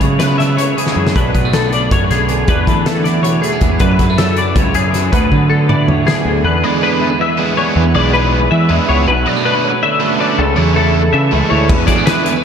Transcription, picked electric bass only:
0.01 C#3
0.96 F#2
1.16 B1
1.34 B1
1.91 F#2
2.10 B1
2.48 E2
2.67 E3
3.61 E2
3.80 F#2
3.99 F#2
4.56 C#2
4.75 F#2
5.12 D2
5.32 D3
6.25 D2
6.44 E2
7.76 E2
7.94 B1
8.51 E3
8.70 E2
8.89 C#2
9.08 B1
10.39 C#2
10.57 E2
11.14 C#3
11.33 C#2
11.52 D2
11.70 E2

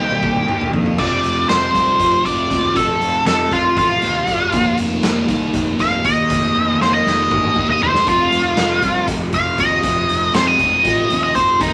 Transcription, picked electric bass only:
Already playing: C2
0.48 D#2
0.73 F2
0.99 F1
1.24 F1
1.49 F1
1.75 C2
1.99 F1
2.25 F1
2.51 D#2
2.76 F1
3.01 F1
3.26 F1
3.51 F1
3.77 A1
4.02 D#2
4.27 F1
4.53 F1
4.79 F1
5.04 F1
5.28 C2
5.54 F1
5.80 F1
6.04 D#2
6.30 F1
6.56 F1
6.81 F1
7.06 F1
7.31 A1
7.57 D#2
7.81 F1
8.07 F1
8.32 F1
8.58 F1
8.83 C2
9.08 F1
9.33 F1
9.59 D#2
9.83 F1
10.09 F1
10.34 F1
10.59 F1
10.85 A1
11.11 D#2
11.36 F1
11.61 F1

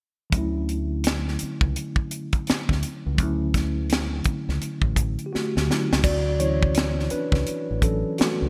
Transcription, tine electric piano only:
0.30 D3 F#3 A3
0.36 C#4 E4
3.14 D3 F#3
3.19 A3 C#4
3.23 E4
5.26 G4
5.33 A3 F#4
5.68 D3 F#3 A3 C#4 E4
6.04 F#4 D5
6.40 E3 F#3 C#4 E4 C#5
7.11 D4 B4
7.83 E3 F#3 C#4 A4
8.19 A3 F#4

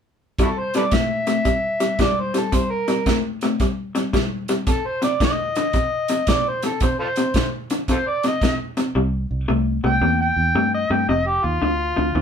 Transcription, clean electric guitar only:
0.39 C3 G3
0.75 C3 G3
0.92 C3 A3
1.27 C3 A3
1.45 C3 G3
1.80 C3 G3
2.00 C3 G3
2.34 C3 G3
2.52 C3 G3
2.88 C3 G3
3.07 C3 A3
3.43 C3 A3
3.61 C3 G3
3.95 C3 G3
4.13 C3 G3
4.49 C3 G3
4.67 F2 C3
5.02 F2 C3
5.21 F2 D3
5.57 F2 D3
5.74 F2 C3
6.10 F2 C3
6.28 F2 C3
6.64 F2 C3
6.82 F2 C3
7.17 F2 C3
7.36 F2 D3
7.71 F2 D3
7.89 F2 C3
8.24 F2 C3
8.43 F2 C3
8.77 F2 C3
8.95 C3 G3
9.48 C3 A3
9.84 C3 A3
10.02 C3 A#3
10.55 C3 A3
10.91 C3 A3
11.09 F2 C3
11.62 F2 D3
11.97 F2 D3
12.15 F2 D#3

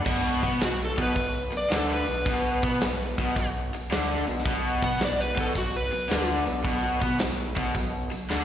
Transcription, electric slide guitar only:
0.64 F#4
0.85 A4
1.03 B4
1.57 D5
1.77 A4
1.94 B4
4.84 F#5
5.05 D5
5.20 B4
5.40 A4
5.58 F#4
5.76 B4

